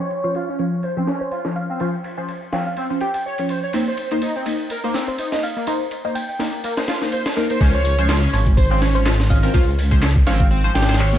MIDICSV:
0, 0, Header, 1, 6, 480
1, 0, Start_track
1, 0, Tempo, 483871
1, 1788, Time_signature, 4, 2, 24, 8
1, 11094, End_track
2, 0, Start_track
2, 0, Title_t, "Soft synth lead"
2, 0, Program_c, 0, 80
2, 1200, Note_on_c, 0, 72, 83
2, 1269, Note_off_c, 0, 72, 0
2, 1303, Note_on_c, 0, 72, 73
2, 1391, Note_off_c, 0, 72, 0
2, 1545, Note_on_c, 0, 77, 87
2, 1632, Note_off_c, 0, 77, 0
2, 1681, Note_on_c, 0, 77, 74
2, 1749, Note_off_c, 0, 77, 0
2, 2507, Note_on_c, 0, 77, 87
2, 2593, Note_off_c, 0, 77, 0
2, 2646, Note_on_c, 0, 77, 74
2, 2712, Note_off_c, 0, 77, 0
2, 2986, Note_on_c, 0, 79, 88
2, 3072, Note_off_c, 0, 79, 0
2, 3123, Note_on_c, 0, 79, 73
2, 3190, Note_off_c, 0, 79, 0
2, 5039, Note_on_c, 0, 72, 86
2, 5108, Note_off_c, 0, 72, 0
2, 5146, Note_on_c, 0, 72, 75
2, 5232, Note_off_c, 0, 72, 0
2, 5388, Note_on_c, 0, 77, 88
2, 5473, Note_off_c, 0, 77, 0
2, 5520, Note_on_c, 0, 77, 76
2, 5589, Note_off_c, 0, 77, 0
2, 6103, Note_on_c, 0, 79, 87
2, 6191, Note_off_c, 0, 79, 0
2, 6237, Note_on_c, 0, 79, 74
2, 6307, Note_off_c, 0, 79, 0
2, 8876, Note_on_c, 0, 72, 87
2, 8947, Note_off_c, 0, 72, 0
2, 8981, Note_on_c, 0, 72, 77
2, 9070, Note_off_c, 0, 72, 0
2, 9226, Note_on_c, 0, 77, 91
2, 9312, Note_off_c, 0, 77, 0
2, 9358, Note_on_c, 0, 77, 77
2, 9428, Note_off_c, 0, 77, 0
2, 10187, Note_on_c, 0, 77, 89
2, 10273, Note_off_c, 0, 77, 0
2, 10315, Note_on_c, 0, 77, 77
2, 10386, Note_off_c, 0, 77, 0
2, 10657, Note_on_c, 0, 79, 91
2, 10748, Note_off_c, 0, 79, 0
2, 10787, Note_on_c, 0, 79, 76
2, 10862, Note_off_c, 0, 79, 0
2, 11094, End_track
3, 0, Start_track
3, 0, Title_t, "Analog synth lead"
3, 0, Program_c, 1, 81
3, 6, Note_on_c, 1, 73, 75
3, 339, Note_off_c, 1, 73, 0
3, 354, Note_on_c, 1, 65, 78
3, 438, Note_off_c, 1, 65, 0
3, 489, Note_on_c, 1, 61, 76
3, 555, Note_off_c, 1, 61, 0
3, 833, Note_on_c, 1, 72, 76
3, 917, Note_off_c, 1, 72, 0
3, 966, Note_on_c, 1, 60, 98
3, 1059, Note_off_c, 1, 60, 0
3, 1076, Note_on_c, 1, 61, 75
3, 1301, Note_off_c, 1, 61, 0
3, 1314, Note_on_c, 1, 65, 79
3, 1398, Note_off_c, 1, 65, 0
3, 1686, Note_on_c, 1, 60, 73
3, 1779, Note_off_c, 1, 60, 0
3, 1791, Note_on_c, 1, 65, 78
3, 1842, Note_off_c, 1, 65, 0
3, 2506, Note_on_c, 1, 60, 74
3, 2634, Note_off_c, 1, 60, 0
3, 2749, Note_on_c, 1, 60, 93
3, 2836, Note_off_c, 1, 60, 0
3, 2988, Note_on_c, 1, 67, 76
3, 3075, Note_off_c, 1, 67, 0
3, 3234, Note_on_c, 1, 73, 96
3, 3318, Note_off_c, 1, 73, 0
3, 3473, Note_on_c, 1, 72, 75
3, 3557, Note_off_c, 1, 72, 0
3, 3604, Note_on_c, 1, 73, 95
3, 3672, Note_off_c, 1, 73, 0
3, 3713, Note_on_c, 1, 60, 80
3, 3797, Note_off_c, 1, 60, 0
3, 3847, Note_on_c, 1, 72, 74
3, 4180, Note_off_c, 1, 72, 0
3, 4191, Note_on_c, 1, 63, 80
3, 4276, Note_off_c, 1, 63, 0
3, 4324, Note_on_c, 1, 60, 75
3, 4392, Note_off_c, 1, 60, 0
3, 4673, Note_on_c, 1, 70, 79
3, 4757, Note_off_c, 1, 70, 0
3, 4804, Note_on_c, 1, 58, 99
3, 4898, Note_off_c, 1, 58, 0
3, 4907, Note_on_c, 1, 60, 76
3, 5137, Note_off_c, 1, 60, 0
3, 5147, Note_on_c, 1, 63, 82
3, 5234, Note_off_c, 1, 63, 0
3, 5520, Note_on_c, 1, 58, 72
3, 5616, Note_off_c, 1, 58, 0
3, 5627, Note_on_c, 1, 63, 78
3, 5679, Note_off_c, 1, 63, 0
3, 6349, Note_on_c, 1, 58, 75
3, 6475, Note_off_c, 1, 58, 0
3, 6589, Note_on_c, 1, 58, 96
3, 6675, Note_off_c, 1, 58, 0
3, 6827, Note_on_c, 1, 65, 78
3, 6914, Note_off_c, 1, 65, 0
3, 7069, Note_on_c, 1, 72, 98
3, 7155, Note_off_c, 1, 72, 0
3, 7309, Note_on_c, 1, 70, 77
3, 7395, Note_off_c, 1, 70, 0
3, 7439, Note_on_c, 1, 72, 96
3, 7510, Note_off_c, 1, 72, 0
3, 7544, Note_on_c, 1, 61, 84
3, 7633, Note_off_c, 1, 61, 0
3, 7681, Note_on_c, 1, 73, 78
3, 8017, Note_off_c, 1, 73, 0
3, 8025, Note_on_c, 1, 65, 83
3, 8114, Note_off_c, 1, 65, 0
3, 8156, Note_on_c, 1, 61, 79
3, 8228, Note_off_c, 1, 61, 0
3, 8501, Note_on_c, 1, 72, 83
3, 8591, Note_off_c, 1, 72, 0
3, 8634, Note_on_c, 1, 60, 102
3, 8733, Note_off_c, 1, 60, 0
3, 8741, Note_on_c, 1, 61, 81
3, 8974, Note_off_c, 1, 61, 0
3, 8983, Note_on_c, 1, 65, 85
3, 9073, Note_off_c, 1, 65, 0
3, 9360, Note_on_c, 1, 60, 76
3, 9454, Note_off_c, 1, 60, 0
3, 9460, Note_on_c, 1, 65, 82
3, 9516, Note_off_c, 1, 65, 0
3, 10184, Note_on_c, 1, 60, 77
3, 10313, Note_off_c, 1, 60, 0
3, 10424, Note_on_c, 1, 60, 98
3, 10513, Note_off_c, 1, 60, 0
3, 10664, Note_on_c, 1, 67, 78
3, 10753, Note_off_c, 1, 67, 0
3, 10906, Note_on_c, 1, 73, 102
3, 10994, Note_off_c, 1, 73, 0
3, 11094, End_track
4, 0, Start_track
4, 0, Title_t, "Synth stab"
4, 0, Program_c, 2, 62
4, 235, Note_on_c, 2, 72, 106
4, 236, Note_on_c, 2, 61, 88
4, 237, Note_on_c, 2, 53, 94
4, 367, Note_off_c, 2, 72, 0
4, 368, Note_off_c, 2, 53, 0
4, 368, Note_off_c, 2, 61, 0
4, 588, Note_on_c, 2, 53, 75
4, 588, Note_on_c, 2, 61, 68
4, 589, Note_on_c, 2, 73, 85
4, 814, Note_off_c, 2, 53, 0
4, 814, Note_off_c, 2, 61, 0
4, 814, Note_off_c, 2, 73, 0
4, 960, Note_on_c, 2, 53, 85
4, 960, Note_on_c, 2, 61, 81
4, 962, Note_on_c, 2, 72, 97
4, 1090, Note_off_c, 2, 53, 0
4, 1090, Note_off_c, 2, 61, 0
4, 1090, Note_off_c, 2, 72, 0
4, 1438, Note_on_c, 2, 61, 77
4, 1439, Note_on_c, 2, 53, 82
4, 1441, Note_on_c, 2, 73, 88
4, 1662, Note_off_c, 2, 61, 0
4, 1663, Note_off_c, 2, 53, 0
4, 1664, Note_off_c, 2, 73, 0
4, 1790, Note_on_c, 2, 53, 97
4, 1790, Note_on_c, 2, 61, 89
4, 1790, Note_on_c, 2, 72, 109
4, 1940, Note_off_c, 2, 53, 0
4, 1940, Note_off_c, 2, 61, 0
4, 1940, Note_off_c, 2, 72, 0
4, 2157, Note_on_c, 2, 53, 95
4, 2157, Note_on_c, 2, 61, 88
4, 2159, Note_on_c, 2, 72, 108
4, 2288, Note_off_c, 2, 53, 0
4, 2288, Note_off_c, 2, 61, 0
4, 2289, Note_off_c, 2, 72, 0
4, 2504, Note_on_c, 2, 53, 73
4, 2504, Note_on_c, 2, 61, 69
4, 2506, Note_on_c, 2, 73, 84
4, 2732, Note_off_c, 2, 53, 0
4, 2732, Note_off_c, 2, 61, 0
4, 2733, Note_off_c, 2, 73, 0
4, 2878, Note_on_c, 2, 61, 80
4, 2878, Note_on_c, 2, 72, 98
4, 2879, Note_on_c, 2, 53, 89
4, 3008, Note_off_c, 2, 61, 0
4, 3009, Note_off_c, 2, 53, 0
4, 3009, Note_off_c, 2, 72, 0
4, 3363, Note_on_c, 2, 61, 75
4, 3363, Note_on_c, 2, 73, 89
4, 3364, Note_on_c, 2, 53, 79
4, 3585, Note_off_c, 2, 53, 0
4, 3585, Note_off_c, 2, 61, 0
4, 3585, Note_off_c, 2, 73, 0
4, 3705, Note_on_c, 2, 63, 92
4, 3705, Note_on_c, 2, 72, 109
4, 3706, Note_on_c, 2, 58, 99
4, 3858, Note_off_c, 2, 58, 0
4, 3858, Note_off_c, 2, 63, 0
4, 3858, Note_off_c, 2, 72, 0
4, 4081, Note_on_c, 2, 58, 98
4, 4081, Note_on_c, 2, 63, 89
4, 4082, Note_on_c, 2, 72, 109
4, 4210, Note_off_c, 2, 58, 0
4, 4210, Note_off_c, 2, 63, 0
4, 4211, Note_off_c, 2, 72, 0
4, 4424, Note_on_c, 2, 75, 84
4, 4425, Note_on_c, 2, 63, 69
4, 4426, Note_on_c, 2, 58, 75
4, 4652, Note_off_c, 2, 63, 0
4, 4652, Note_off_c, 2, 75, 0
4, 4653, Note_off_c, 2, 58, 0
4, 4799, Note_on_c, 2, 63, 82
4, 4800, Note_on_c, 2, 58, 88
4, 4800, Note_on_c, 2, 72, 95
4, 4929, Note_off_c, 2, 63, 0
4, 4930, Note_off_c, 2, 58, 0
4, 4930, Note_off_c, 2, 72, 0
4, 5278, Note_on_c, 2, 75, 89
4, 5279, Note_on_c, 2, 58, 80
4, 5280, Note_on_c, 2, 63, 75
4, 5502, Note_off_c, 2, 75, 0
4, 5503, Note_off_c, 2, 58, 0
4, 5503, Note_off_c, 2, 63, 0
4, 5628, Note_on_c, 2, 58, 102
4, 5628, Note_on_c, 2, 63, 92
4, 5628, Note_on_c, 2, 72, 113
4, 5779, Note_off_c, 2, 58, 0
4, 5779, Note_off_c, 2, 63, 0
4, 5779, Note_off_c, 2, 72, 0
4, 5997, Note_on_c, 2, 58, 94
4, 6000, Note_on_c, 2, 63, 91
4, 6000, Note_on_c, 2, 72, 107
4, 6128, Note_off_c, 2, 58, 0
4, 6129, Note_off_c, 2, 63, 0
4, 6130, Note_off_c, 2, 72, 0
4, 6341, Note_on_c, 2, 58, 76
4, 6342, Note_on_c, 2, 63, 68
4, 6343, Note_on_c, 2, 75, 83
4, 6571, Note_off_c, 2, 58, 0
4, 6571, Note_off_c, 2, 63, 0
4, 6571, Note_off_c, 2, 75, 0
4, 6720, Note_on_c, 2, 58, 90
4, 6721, Note_on_c, 2, 63, 80
4, 6721, Note_on_c, 2, 72, 97
4, 6850, Note_off_c, 2, 58, 0
4, 6850, Note_off_c, 2, 63, 0
4, 6850, Note_off_c, 2, 72, 0
4, 6962, Note_on_c, 2, 58, 84
4, 6962, Note_on_c, 2, 63, 78
4, 6962, Note_on_c, 2, 72, 96
4, 7184, Note_off_c, 2, 58, 0
4, 7184, Note_off_c, 2, 63, 0
4, 7184, Note_off_c, 2, 72, 0
4, 7308, Note_on_c, 2, 58, 94
4, 7308, Note_on_c, 2, 63, 85
4, 7308, Note_on_c, 2, 77, 102
4, 7409, Note_off_c, 2, 58, 0
4, 7409, Note_off_c, 2, 63, 0
4, 7409, Note_off_c, 2, 77, 0
4, 7440, Note_on_c, 2, 63, 79
4, 7441, Note_on_c, 2, 70, 97
4, 7442, Note_on_c, 2, 58, 87
4, 7531, Note_off_c, 2, 63, 0
4, 7531, Note_off_c, 2, 70, 0
4, 7532, Note_off_c, 2, 58, 0
4, 7549, Note_on_c, 2, 53, 102
4, 7550, Note_on_c, 2, 61, 95
4, 7550, Note_on_c, 2, 72, 112
4, 7700, Note_off_c, 2, 53, 0
4, 7700, Note_off_c, 2, 61, 0
4, 7700, Note_off_c, 2, 72, 0
4, 7920, Note_on_c, 2, 53, 101
4, 7920, Note_on_c, 2, 61, 94
4, 7921, Note_on_c, 2, 72, 109
4, 8049, Note_off_c, 2, 61, 0
4, 8050, Note_off_c, 2, 53, 0
4, 8050, Note_off_c, 2, 72, 0
4, 8266, Note_on_c, 2, 53, 79
4, 8266, Note_on_c, 2, 61, 72
4, 8267, Note_on_c, 2, 73, 86
4, 8493, Note_off_c, 2, 53, 0
4, 8493, Note_off_c, 2, 61, 0
4, 8494, Note_off_c, 2, 73, 0
4, 8639, Note_on_c, 2, 61, 82
4, 8641, Note_on_c, 2, 53, 93
4, 8641, Note_on_c, 2, 72, 104
4, 8769, Note_off_c, 2, 61, 0
4, 8770, Note_off_c, 2, 53, 0
4, 8770, Note_off_c, 2, 72, 0
4, 8877, Note_on_c, 2, 53, 89
4, 8878, Note_on_c, 2, 61, 80
4, 8878, Note_on_c, 2, 72, 101
4, 9102, Note_off_c, 2, 53, 0
4, 9102, Note_off_c, 2, 61, 0
4, 9102, Note_off_c, 2, 72, 0
4, 9222, Note_on_c, 2, 53, 94
4, 9222, Note_on_c, 2, 61, 87
4, 9222, Note_on_c, 2, 75, 108
4, 9326, Note_off_c, 2, 53, 0
4, 9326, Note_off_c, 2, 61, 0
4, 9326, Note_off_c, 2, 75, 0
4, 9352, Note_on_c, 2, 61, 83
4, 9353, Note_on_c, 2, 70, 102
4, 9354, Note_on_c, 2, 53, 89
4, 9447, Note_off_c, 2, 61, 0
4, 9448, Note_off_c, 2, 53, 0
4, 9448, Note_off_c, 2, 70, 0
4, 9461, Note_on_c, 2, 53, 103
4, 9462, Note_on_c, 2, 61, 93
4, 9462, Note_on_c, 2, 72, 112
4, 9616, Note_off_c, 2, 53, 0
4, 9616, Note_off_c, 2, 61, 0
4, 9616, Note_off_c, 2, 72, 0
4, 9834, Note_on_c, 2, 53, 98
4, 9834, Note_on_c, 2, 61, 91
4, 9834, Note_on_c, 2, 72, 112
4, 9966, Note_off_c, 2, 72, 0
4, 9967, Note_off_c, 2, 53, 0
4, 9967, Note_off_c, 2, 61, 0
4, 10184, Note_on_c, 2, 53, 78
4, 10184, Note_on_c, 2, 61, 74
4, 10184, Note_on_c, 2, 73, 86
4, 10412, Note_off_c, 2, 53, 0
4, 10412, Note_off_c, 2, 61, 0
4, 10412, Note_off_c, 2, 73, 0
4, 10556, Note_on_c, 2, 53, 92
4, 10557, Note_on_c, 2, 61, 81
4, 10557, Note_on_c, 2, 72, 99
4, 10688, Note_off_c, 2, 53, 0
4, 10688, Note_off_c, 2, 61, 0
4, 10688, Note_off_c, 2, 72, 0
4, 10801, Note_on_c, 2, 72, 99
4, 10802, Note_on_c, 2, 53, 92
4, 10802, Note_on_c, 2, 61, 82
4, 11024, Note_off_c, 2, 53, 0
4, 11024, Note_off_c, 2, 61, 0
4, 11024, Note_off_c, 2, 72, 0
4, 11094, End_track
5, 0, Start_track
5, 0, Title_t, "Detuned saw bass"
5, 0, Program_c, 3, 39
5, 7547, Note_on_c, 3, 37, 97
5, 8203, Note_off_c, 3, 37, 0
5, 8266, Note_on_c, 3, 32, 91
5, 9402, Note_off_c, 3, 32, 0
5, 9468, Note_on_c, 3, 37, 99
5, 10123, Note_off_c, 3, 37, 0
5, 10189, Note_on_c, 3, 32, 96
5, 10604, Note_off_c, 3, 32, 0
5, 10663, Note_on_c, 3, 32, 105
5, 11094, Note_off_c, 3, 32, 0
5, 11094, End_track
6, 0, Start_track
6, 0, Title_t, "Drums"
6, 105, Note_on_c, 9, 51, 63
6, 204, Note_off_c, 9, 51, 0
6, 239, Note_on_c, 9, 51, 39
6, 338, Note_off_c, 9, 51, 0
6, 344, Note_on_c, 9, 51, 84
6, 443, Note_off_c, 9, 51, 0
6, 585, Note_on_c, 9, 51, 63
6, 684, Note_off_c, 9, 51, 0
6, 823, Note_on_c, 9, 51, 82
6, 922, Note_off_c, 9, 51, 0
6, 1066, Note_on_c, 9, 38, 42
6, 1066, Note_on_c, 9, 51, 63
6, 1166, Note_off_c, 9, 38, 0
6, 1166, Note_off_c, 9, 51, 0
6, 1304, Note_on_c, 9, 51, 80
6, 1403, Note_off_c, 9, 51, 0
6, 1436, Note_on_c, 9, 38, 38
6, 1535, Note_off_c, 9, 38, 0
6, 1545, Note_on_c, 9, 51, 63
6, 1644, Note_off_c, 9, 51, 0
6, 1784, Note_on_c, 9, 51, 83
6, 1883, Note_off_c, 9, 51, 0
6, 2024, Note_on_c, 9, 51, 66
6, 2123, Note_off_c, 9, 51, 0
6, 2266, Note_on_c, 9, 51, 84
6, 2365, Note_off_c, 9, 51, 0
6, 2506, Note_on_c, 9, 38, 45
6, 2506, Note_on_c, 9, 51, 65
6, 2605, Note_off_c, 9, 38, 0
6, 2605, Note_off_c, 9, 51, 0
6, 2745, Note_on_c, 9, 51, 74
6, 2844, Note_off_c, 9, 51, 0
6, 2983, Note_on_c, 9, 51, 57
6, 3082, Note_off_c, 9, 51, 0
6, 3116, Note_on_c, 9, 51, 74
6, 3215, Note_off_c, 9, 51, 0
6, 3354, Note_on_c, 9, 51, 59
6, 3453, Note_off_c, 9, 51, 0
6, 3461, Note_on_c, 9, 51, 65
6, 3561, Note_off_c, 9, 51, 0
6, 3700, Note_on_c, 9, 51, 81
6, 3799, Note_off_c, 9, 51, 0
6, 3942, Note_on_c, 9, 51, 63
6, 4041, Note_off_c, 9, 51, 0
6, 4078, Note_on_c, 9, 51, 40
6, 4177, Note_off_c, 9, 51, 0
6, 4183, Note_on_c, 9, 51, 84
6, 4282, Note_off_c, 9, 51, 0
6, 4423, Note_on_c, 9, 51, 66
6, 4522, Note_off_c, 9, 51, 0
6, 4663, Note_on_c, 9, 51, 82
6, 4762, Note_off_c, 9, 51, 0
6, 4904, Note_on_c, 9, 38, 42
6, 4904, Note_on_c, 9, 51, 64
6, 5003, Note_off_c, 9, 38, 0
6, 5003, Note_off_c, 9, 51, 0
6, 5143, Note_on_c, 9, 51, 82
6, 5242, Note_off_c, 9, 51, 0
6, 5279, Note_on_c, 9, 38, 39
6, 5378, Note_off_c, 9, 38, 0
6, 5384, Note_on_c, 9, 51, 65
6, 5483, Note_off_c, 9, 51, 0
6, 5623, Note_on_c, 9, 51, 81
6, 5722, Note_off_c, 9, 51, 0
6, 5864, Note_on_c, 9, 51, 63
6, 5963, Note_off_c, 9, 51, 0
6, 6105, Note_on_c, 9, 51, 85
6, 6204, Note_off_c, 9, 51, 0
6, 6347, Note_on_c, 9, 38, 45
6, 6347, Note_on_c, 9, 51, 66
6, 6446, Note_off_c, 9, 38, 0
6, 6446, Note_off_c, 9, 51, 0
6, 6587, Note_on_c, 9, 51, 84
6, 6686, Note_off_c, 9, 51, 0
6, 6719, Note_on_c, 9, 38, 56
6, 6818, Note_off_c, 9, 38, 0
6, 6825, Note_on_c, 9, 38, 98
6, 6825, Note_on_c, 9, 51, 75
6, 6924, Note_off_c, 9, 38, 0
6, 6924, Note_off_c, 9, 51, 0
6, 6960, Note_on_c, 9, 38, 35
6, 7059, Note_off_c, 9, 38, 0
6, 7065, Note_on_c, 9, 51, 59
6, 7164, Note_off_c, 9, 51, 0
6, 7199, Note_on_c, 9, 38, 101
6, 7199, Note_on_c, 9, 51, 75
6, 7299, Note_off_c, 9, 38, 0
6, 7299, Note_off_c, 9, 51, 0
6, 7307, Note_on_c, 9, 38, 35
6, 7406, Note_off_c, 9, 38, 0
6, 7439, Note_on_c, 9, 51, 57
6, 7538, Note_off_c, 9, 51, 0
6, 7545, Note_on_c, 9, 51, 89
6, 7546, Note_on_c, 9, 36, 110
6, 7550, Note_on_c, 9, 42, 32
6, 7644, Note_off_c, 9, 51, 0
6, 7645, Note_off_c, 9, 36, 0
6, 7650, Note_off_c, 9, 42, 0
6, 7785, Note_on_c, 9, 51, 68
6, 7791, Note_on_c, 9, 42, 77
6, 7884, Note_off_c, 9, 51, 0
6, 7891, Note_off_c, 9, 42, 0
6, 7921, Note_on_c, 9, 51, 42
6, 7925, Note_on_c, 9, 42, 44
6, 8020, Note_off_c, 9, 51, 0
6, 8024, Note_off_c, 9, 42, 0
6, 8026, Note_on_c, 9, 38, 119
6, 8026, Note_on_c, 9, 51, 90
6, 8033, Note_on_c, 9, 39, 107
6, 8033, Note_on_c, 9, 42, 33
6, 8125, Note_off_c, 9, 38, 0
6, 8125, Note_off_c, 9, 51, 0
6, 8132, Note_off_c, 9, 39, 0
6, 8132, Note_off_c, 9, 42, 0
6, 8268, Note_on_c, 9, 51, 71
6, 8271, Note_on_c, 9, 42, 76
6, 8367, Note_off_c, 9, 51, 0
6, 8371, Note_off_c, 9, 42, 0
6, 8400, Note_on_c, 9, 36, 97
6, 8403, Note_on_c, 9, 42, 43
6, 8499, Note_off_c, 9, 36, 0
6, 8503, Note_off_c, 9, 42, 0
6, 8507, Note_on_c, 9, 36, 114
6, 8508, Note_on_c, 9, 51, 87
6, 8511, Note_on_c, 9, 42, 33
6, 8606, Note_off_c, 9, 36, 0
6, 8607, Note_off_c, 9, 51, 0
6, 8610, Note_off_c, 9, 42, 0
6, 8748, Note_on_c, 9, 42, 80
6, 8749, Note_on_c, 9, 38, 44
6, 8749, Note_on_c, 9, 51, 69
6, 8847, Note_off_c, 9, 42, 0
6, 8849, Note_off_c, 9, 38, 0
6, 8849, Note_off_c, 9, 51, 0
6, 8882, Note_on_c, 9, 42, 43
6, 8982, Note_off_c, 9, 42, 0
6, 8988, Note_on_c, 9, 38, 120
6, 8988, Note_on_c, 9, 51, 89
6, 8991, Note_on_c, 9, 39, 109
6, 8991, Note_on_c, 9, 42, 34
6, 9088, Note_off_c, 9, 38, 0
6, 9088, Note_off_c, 9, 51, 0
6, 9090, Note_off_c, 9, 39, 0
6, 9090, Note_off_c, 9, 42, 0
6, 9125, Note_on_c, 9, 38, 42
6, 9224, Note_off_c, 9, 38, 0
6, 9228, Note_on_c, 9, 36, 96
6, 9228, Note_on_c, 9, 42, 78
6, 9230, Note_on_c, 9, 51, 70
6, 9327, Note_off_c, 9, 36, 0
6, 9328, Note_off_c, 9, 42, 0
6, 9329, Note_off_c, 9, 51, 0
6, 9363, Note_on_c, 9, 42, 46
6, 9462, Note_off_c, 9, 42, 0
6, 9468, Note_on_c, 9, 36, 109
6, 9469, Note_on_c, 9, 42, 32
6, 9470, Note_on_c, 9, 51, 88
6, 9567, Note_off_c, 9, 36, 0
6, 9568, Note_off_c, 9, 42, 0
6, 9569, Note_off_c, 9, 51, 0
6, 9708, Note_on_c, 9, 42, 76
6, 9708, Note_on_c, 9, 51, 70
6, 9807, Note_off_c, 9, 42, 0
6, 9808, Note_off_c, 9, 51, 0
6, 9840, Note_on_c, 9, 36, 94
6, 9842, Note_on_c, 9, 42, 45
6, 9940, Note_off_c, 9, 36, 0
6, 9941, Note_off_c, 9, 42, 0
6, 9945, Note_on_c, 9, 39, 108
6, 9945, Note_on_c, 9, 42, 33
6, 9947, Note_on_c, 9, 38, 117
6, 9947, Note_on_c, 9, 51, 91
6, 10044, Note_off_c, 9, 39, 0
6, 10044, Note_off_c, 9, 42, 0
6, 10047, Note_off_c, 9, 38, 0
6, 10047, Note_off_c, 9, 51, 0
6, 10080, Note_on_c, 9, 36, 99
6, 10179, Note_off_c, 9, 36, 0
6, 10185, Note_on_c, 9, 42, 75
6, 10187, Note_on_c, 9, 38, 49
6, 10187, Note_on_c, 9, 51, 69
6, 10285, Note_off_c, 9, 42, 0
6, 10286, Note_off_c, 9, 38, 0
6, 10286, Note_off_c, 9, 51, 0
6, 10318, Note_on_c, 9, 42, 46
6, 10320, Note_on_c, 9, 36, 102
6, 10417, Note_off_c, 9, 42, 0
6, 10419, Note_off_c, 9, 36, 0
6, 10425, Note_on_c, 9, 42, 33
6, 10524, Note_off_c, 9, 42, 0
6, 10666, Note_on_c, 9, 42, 82
6, 10667, Note_on_c, 9, 38, 89
6, 10667, Note_on_c, 9, 51, 67
6, 10736, Note_off_c, 9, 38, 0
6, 10736, Note_off_c, 9, 51, 0
6, 10736, Note_on_c, 9, 38, 91
6, 10736, Note_on_c, 9, 51, 70
6, 10765, Note_off_c, 9, 42, 0
6, 10800, Note_on_c, 9, 42, 43
6, 10803, Note_off_c, 9, 38, 0
6, 10803, Note_off_c, 9, 51, 0
6, 10803, Note_on_c, 9, 38, 91
6, 10803, Note_on_c, 9, 51, 68
6, 10854, Note_off_c, 9, 38, 0
6, 10854, Note_off_c, 9, 51, 0
6, 10854, Note_on_c, 9, 38, 90
6, 10854, Note_on_c, 9, 51, 70
6, 10900, Note_off_c, 9, 42, 0
6, 10909, Note_off_c, 9, 51, 0
6, 10909, Note_on_c, 9, 39, 110
6, 10909, Note_on_c, 9, 42, 34
6, 10909, Note_on_c, 9, 51, 88
6, 10953, Note_off_c, 9, 38, 0
6, 11008, Note_off_c, 9, 39, 0
6, 11008, Note_off_c, 9, 42, 0
6, 11008, Note_off_c, 9, 51, 0
6, 11041, Note_on_c, 9, 38, 39
6, 11094, Note_off_c, 9, 38, 0
6, 11094, End_track
0, 0, End_of_file